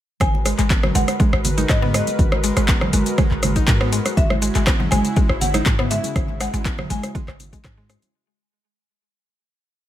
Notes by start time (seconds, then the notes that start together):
0.20 G#1 G#3 F#4 A#4 B4 G#5, kick, cross-stick, closed hi-hat, low conga, shaker
0.34 muted conga, high conga
0.46 G#3, cross-stick, open hi-hat, shaker
0.59 G#1 G#3, clap, closed hi-hat, muted conga, shaker
0.70 B3, kick, clap, closed hi-hat, shaker
0.83 F#3, cross-stick, low conga
0.95 G#1 G#3 F#5, open hi-hat, muted conga, high conga, shaker
1.08 cross-stick, closed hi-hat, shaker
1.20 G#3, kick, closed hi-hat, muted conga, high conga, shaker
1.33 G#1, cross-stick
1.45 open hi-hat, muted conga, low conga, shaker
1.58 D#4, closed hi-hat, high conga, shaker
1.69 G#2 D#5, kick, cross-stick, clap, closed hi-hat, shaker
1.82 B3, muted conga, low conga
1.94 G#3 D#5, cross-stick, open hi-hat, shaker
2.07 closed hi-hat, muted conga, shaker
2.19 G#1, kick, closed hi-hat, low conga, shaker
2.32 cross-stick, muted conga, high conga
2.44 G#3, open hi-hat, shaker
2.57 G#1 G#3, cross-stick, closed hi-hat, muted conga, shaker
2.68 B3, kick, clap, closed hi-hat, shaker
2.81 F#3, cross-stick, low conga
2.93 G#1 G#3, open hi-hat, muted conga, high conga, shaker
3.06 closed hi-hat, shaker
3.18 G#3, kick, cross-stick, closed hi-hat, muted conga, high conga, low conga, shaker
3.31 G#1, clap
3.43 cross-stick, open hi-hat, muted conga, high conga, low conga, shaker
3.56 D#4, kick, closed hi-hat, shaker
3.68 G#2, kick, clap, closed hi-hat, high conga, shaker
3.81 B3, cross-stick, muted conga
3.92 G#3, open hi-hat, shaker
4.06 cross-stick, closed hi-hat, muted conga, shaker
4.17 G#1 C#3 E4 E5, kick, closed hi-hat, low conga, shaker
4.30 cross-stick, muted conga, high conga
4.42 G#3, open hi-hat, shaker
4.55 G#1 G#3, clap, closed hi-hat, muted conga, shaker
4.67 B3, kick, cross-stick, clap, closed hi-hat, shaker
4.80 F#3, low conga
4.91 G#1 G#3 G#5, cross-stick, open hi-hat, muted conga, high conga, shaker
5.05 closed hi-hat, shaker
5.16 G#3, kick, closed hi-hat, muted conga, high conga, shaker
5.29 G#1, cross-stick
5.41 F#5, open hi-hat, muted conga, low conga, shaker
5.54 D#4, cross-stick, closed hi-hat, high conga, shaker
5.66 G#2, kick, clap, closed hi-hat, shaker
5.79 B3, cross-stick, muted conga, low conga
5.91 G#3 E5, open hi-hat, shaker
6.04 closed hi-hat, muted conga, shaker
6.16 G#1, kick, cross-stick, closed hi-hat, low conga, shaker
6.28 muted conga, high conga
6.41 G#3 F#5, cross-stick, open hi-hat, shaker
6.53 G#1 G#3, closed hi-hat, muted conga, shaker
6.65 B3, kick, clap, closed hi-hat, shaker
6.78 F#3, cross-stick, low conga
6.90 G#1 G#3 G#5, open hi-hat, muted conga, high conga, shaker
7.03 cross-stick, closed hi-hat, shaker
7.15 G#3, kick, closed hi-hat, muted conga, high conga, low conga, shaker
7.28 G#1, cross-stick, clap
7.40 open hi-hat, muted conga, high conga, low conga, shaker
7.53 G#3, kick, closed hi-hat, shaker
7.64 G#2, kick, cross-stick, clap, closed hi-hat, high conga, shaker
7.78 G#3, muted conga
7.89 G#3, cross-stick, open hi-hat, shaker
8.02 closed hi-hat, muted conga, shaker